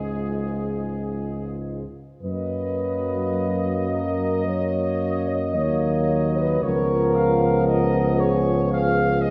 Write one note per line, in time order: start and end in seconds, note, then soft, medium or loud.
0.00 1.84 C#2 soft
0.00 1.85 G#2 soft
0.00 1.85 G#3 soft
0.00 1.85 F4 soft
0.00 1.64 G#4 soft
2.22 5.56 F#2 soft
2.22 4.42 F#3 soft
2.22 4.42 A#3 soft
2.22 3.86 B4 medium
2.22 6.60 D#5 medium
3.90 4.46 A#4 medium
4.45 5.54 F#3 soft
4.45 5.53 A#3 medium
4.45 5.28 C#5 medium
5.29 5.56 D#5 medium
5.55 6.61 D#2 soft
5.55 6.62 F#3 soft
5.55 6.66 A#3 soft
5.55 6.37 C#5 medium
6.37 6.64 B4 medium
6.62 9.30 C#2 medium
6.62 9.30 F3 medium
6.62 9.30 B3 medium
6.62 8.17 A#4 medium
6.62 7.16 C#5 medium
7.15 7.67 F5 medium
7.68 8.18 D#5 medium
8.19 9.30 G#4 medium
8.19 8.71 C#5 medium
8.72 9.21 F5 medium
9.21 9.30 D#5 medium